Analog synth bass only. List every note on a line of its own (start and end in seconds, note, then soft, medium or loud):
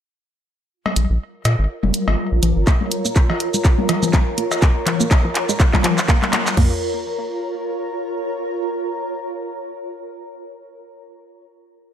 0.96 1.07 A#1 medium
1.10 1.18 A#1 loud
1.45 1.56 A#2 medium
1.59 1.67 G#1 medium
1.83 1.91 F1 medium
2.08 2.16 G#1 medium
2.32 2.40 A#1 medium
2.43 2.53 A#1 loud
2.56 2.65 G#1 medium